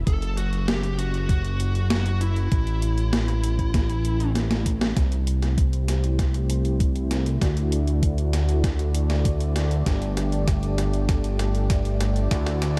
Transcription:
0.07 2.49 F#1 medium
0.07 0.37 A4 loud
0.07 kick loud
0.07 closed hi-hat medium
0.22 closed hi-hat soft
0.37 0.68 F#4 loud
0.37 closed hi-hat medium
0.53 closed hi-hat soft
0.68 0.97 G4 loud
0.68 snare loud
0.68 closed hi-hat medium
0.83 closed hi-hat soft
0.99 1.28 F#4 loud
0.99 closed hi-hat medium
1.14 closed hi-hat soft
1.29 1.86 F#4 loud
1.29 kick loud
1.29 closed hi-hat medium
1.45 closed hi-hat soft
1.60 closed hi-hat medium
1.75 closed hi-hat soft
1.90 2.19 F#4 loud
1.90 snare loud
1.90 closed hi-hat medium
2.06 closed hi-hat soft
2.21 4.31 E4 medium
2.21 closed hi-hat medium
2.36 closed hi-hat soft
2.52 4.94 A1 medium
2.52 kick loud
2.52 closed hi-hat medium
2.67 closed hi-hat soft
2.82 closed hi-hat medium
2.98 closed hi-hat soft
3.13 snare loud
3.13 closed hi-hat medium
3.28 closed hi-hat soft
3.44 closed hi-hat medium
3.59 kick medium
3.59 closed hi-hat soft
3.74 kick loud
3.74 snare medium
3.74 closed hi-hat medium
3.90 closed hi-hat soft
4.05 closed hi-hat medium
4.20 closed hi-hat soft
4.35 snare medium
4.35 closed hi-hat medium
4.51 snare medium
4.51 closed hi-hat soft
4.66 kick medium
4.66 closed hi-hat medium
4.81 snare medium
4.81 closed hi-hat soft
4.97 7.38 C2 medium
4.97 12.80 A3 medium
4.97 9.82 E4 medium
4.97 7.39 G4 medium
4.97 7.39 C5 medium
4.97 kick loud
4.97 snare soft
4.97 closed hi-hat medium
5.12 closed hi-hat soft
5.27 closed hi-hat medium
5.42 snare soft
5.42 closed hi-hat soft
5.58 kick medium
5.58 closed hi-hat medium
5.73 closed hi-hat soft
5.88 snare soft
5.88 closed hi-hat medium
6.04 closed hi-hat soft
6.19 kick loud
6.19 snare medium
6.19 closed hi-hat medium
6.34 closed hi-hat soft
6.50 closed hi-hat loud
6.65 closed hi-hat soft
6.80 kick medium
6.80 closed hi-hat medium
6.96 closed hi-hat soft
7.11 snare medium
7.11 closed hi-hat loud
7.26 closed hi-hat soft
7.41 9.83 D2 medium
7.41 9.84 F#4 medium
7.41 12.27 D5 medium
7.41 kick loud
7.41 snare medium
7.41 closed hi-hat medium
7.57 closed hi-hat soft
7.72 closed hi-hat loud
7.87 closed hi-hat soft
8.03 kick medium
8.03 closed hi-hat medium
8.18 closed hi-hat soft
8.33 snare medium
8.33 closed hi-hat medium
8.49 closed hi-hat soft
8.64 kick loud
8.64 snare medium
8.64 closed hi-hat medium
8.79 closed hi-hat soft
8.95 closed hi-hat loud
9.10 snare medium
9.10 closed hi-hat soft
9.25 kick loud
9.25 closed hi-hat medium
9.40 closed hi-hat soft
9.56 snare medium
9.56 closed hi-hat loud
9.71 closed hi-hat soft
9.86 12.28 G1 medium
9.86 12.29 D4 medium
9.86 12.29 G4 medium
9.86 kick loud
9.86 snare medium
9.86 closed hi-hat medium
10.02 closed hi-hat soft
10.17 snare medium
10.17 closed hi-hat loud
10.32 closed hi-hat soft
10.48 kick loud
10.48 snare medium
10.48 closed hi-hat medium
10.63 closed hi-hat soft
10.78 snare medium
10.78 closed hi-hat medium
10.93 closed hi-hat soft
11.09 kick loud
11.09 snare medium
11.09 closed hi-hat medium
11.24 closed hi-hat soft
11.39 snare medium
11.39 closed hi-hat medium
11.55 closed hi-hat soft
11.70 kick medium
11.70 snare medium
11.70 closed hi-hat medium
11.85 closed hi-hat soft
12.01 snare medium
12.01 closed hi-hat loud
12.16 closed hi-hat soft
12.31 12.80 D2 medium
12.31 12.80 E4 medium
12.31 12.80 F#4 medium
12.31 12.80 D5 medium
12.31 kick loud
12.31 snare medium
12.31 closed hi-hat medium
12.47 snare medium
12.47 closed hi-hat soft
12.62 snare medium
12.62 closed hi-hat medium

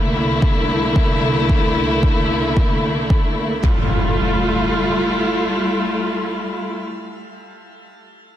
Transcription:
0.00 3.60 C2 medium
0.00 3.60 D3 medium
0.00 3.60 A3 medium
0.00 3.60 A#3 medium
0.00 3.60 E4 medium
0.04 shaker soft
0.16 shaker medium
0.31 shaker soft
0.42 kick medium
0.42 shaker soft
0.58 shaker soft
0.70 shaker medium
0.85 shaker soft
0.96 kick medium
0.96 shaker soft
1.23 shaker medium
1.38 shaker soft
1.49 kick medium
1.49 shaker soft
1.65 shaker soft
1.77 shaker medium
1.92 shaker soft
2.03 kick medium
2.03 shaker soft
2.19 shaker soft
2.31 shaker medium
2.46 shaker soft
2.57 kick medium
2.57 shaker soft
2.84 shaker medium
2.99 shaker soft
3.10 kick medium
3.10 shaker soft
3.38 shaker medium
3.53 shaker soft
3.64 6.82 G3 medium
3.64 6.82 A3 medium
3.64 6.82 E4 medium
3.64 6.82 F4 medium
3.64 kick medium
3.64 impact medium

